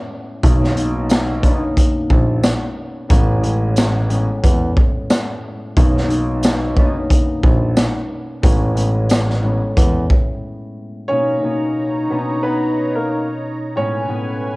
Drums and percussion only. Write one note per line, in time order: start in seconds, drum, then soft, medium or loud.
0.43 kick loud
0.43 closed hi-hat medium
0.64 snare soft
0.77 closed hi-hat medium
1.09 snare loud
1.09 closed hi-hat medium
1.09 tambourine medium
1.43 kick loud
1.43 closed hi-hat medium
1.77 kick loud
1.77 closed hi-hat loud
2.10 kick loud
2.43 snare loud
2.43 closed hi-hat medium
2.43 tambourine medium
3.10 kick loud
3.10 closed hi-hat medium
3.44 closed hi-hat medium
3.76 snare loud
3.76 closed hi-hat medium
3.76 tambourine medium
4.10 closed hi-hat medium
4.44 kick loud
4.44 closed hi-hat loud
4.77 kick loud
5.10 snare loud
5.10 closed hi-hat medium
5.10 tambourine medium
5.77 kick loud
5.77 closed hi-hat medium
5.97 snare soft
6.10 closed hi-hat medium
6.43 snare loud
6.43 closed hi-hat medium
6.43 tambourine medium
6.77 kick loud
7.10 kick loud
7.10 closed hi-hat loud
7.43 kick loud
7.77 snare loud
7.77 closed hi-hat medium
7.77 tambourine medium
8.43 kick loud
8.43 closed hi-hat medium
8.77 closed hi-hat medium
9.09 snare loud
9.09 closed hi-hat medium
9.09 tambourine medium
9.30 snare soft
9.77 kick loud
9.77 closed hi-hat loud
10.10 kick loud